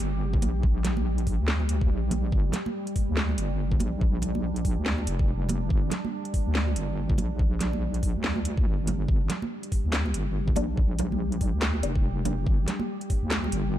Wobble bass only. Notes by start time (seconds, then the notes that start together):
0.00 G1
0.42 A#1
1.39 D2
1.90 A#1
2.32 G1
3.08 D2
3.38 G1
3.80 A#1
4.77 D2
5.07 F1
5.70 G1
6.46 D2
6.76 G1
7.18 A#1
8.15 D2
8.66 G1
9.09 G1
9.84 D2
10.14 G1
10.56 A#1
11.53 D2
11.83 F1
12.47 G1
13.22 D2
13.52 G1